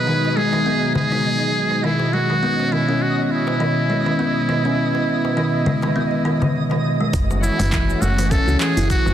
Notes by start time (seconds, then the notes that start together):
Already playing: B2 F#3 G#3 D#4 B4 D#5
0.07 D#3
0.25 darbuka ka
0.37 G#3 G#4
0.53 D#3, darbuka tek
0.66 B3
0.95 D#3 G#4, darbuka dum
1.12 D#4, darbuka ka, darbuka tek
1.71 darbuka ka
1.84 D#3 E4
2.00 darbuka tek
2.13 G#3 F#4
2.30 D#3
2.43 B3 C#4 D#5
2.60 darbuka ka
2.72 D#3 E4
2.89 C#4
3.02 F#4
3.25 F#4
3.31 E4
3.47 darbuka ka, darbuka tek
3.60 D#3
3.90 G#3
4.06 D#3, darbuka ka
4.19 B3
4.49 D#3, darbuka ka
4.65 C#4
4.78 B3
4.95 darbuka ka
5.25 darbuka tek
5.37 D#3
5.66 G#3, darbuka dum
5.82 D#3, darbuka ka, darbuka tek
5.96 B3
6.25 D#3
6.42 D#3, darbuka ka, darbuka dum
6.71 D#3, darbuka tek
7.01 G#3
7.13 F#1 E3 A3 C#4 F#4 F#5, kick, open hi-hat, shaker
7.30 darbuka ka, shaker
7.43 E4, shaker
7.59 F#1, open hi-hat, darbuka tek, shaker
7.72 E3, kick, clap, open hi-hat, shaker
7.90 shaker
8.01 F#1 A3 F#4, shaker
8.18 E3, open hi-hat, darbuka tek, shaker
8.31 C#4 A4, kick, open hi-hat, shaker
8.47 C#2, shaker
8.60 E3 G#4, clap, shaker
8.77 F#1 E4, open hi-hat, shaker
8.90 F#4, kick, open hi-hat, shaker
9.06 F#1, darbuka tek, shaker